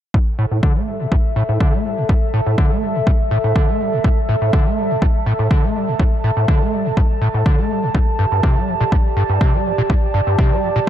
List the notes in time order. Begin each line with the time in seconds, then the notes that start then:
0.14 A2 A4, kick
0.31 E5
0.39 A2
0.51 A2
0.63 D3, kick
0.76 A3
0.87 G3
1.00 A2
1.12 A2, kick
1.29 A5
1.36 A2
1.49 A2
1.60 D3, kick
1.73 A3
1.85 G3
1.98 A2
2.09 A2, kick
2.34 A2
2.47 A2
2.58 D3, kick
2.71 A3
2.82 G3
2.95 A2
3.07 A2, kick
3.31 A2
3.44 A2
3.56 D3, kick
3.69 A3
3.80 G3
3.93 A2
4.04 A2, kick
4.29 A2
4.42 A2
4.53 D3, kick
4.66 A3
4.78 G3
4.90 A2
5.02 A2, kick
5.26 A2
5.39 A2
5.51 D3, kick
5.64 A3
5.75 G3
5.88 A2
5.99 A2, kick
6.24 A2
6.37 A2
6.48 D3, kick
6.61 A3
6.73 G3
6.85 A2
6.97 A2, kick
7.21 A2
7.34 A2
7.46 D3, kick
7.59 A3
7.70 G3
7.83 A2
7.95 G2 G4, kick
8.19 G2
8.32 G2
8.43 C3, kick
8.54 G3 D5
8.68 F3
8.81 A#2
8.92 G2, kick
9.17 G2
9.29 G2
9.41 C3, kick
9.54 G3
9.65 F3
9.78 A#2
9.90 G2, kick
10.14 G2
10.27 G2
10.39 C3, kick
10.51 G3
10.63 F3
10.76 A#2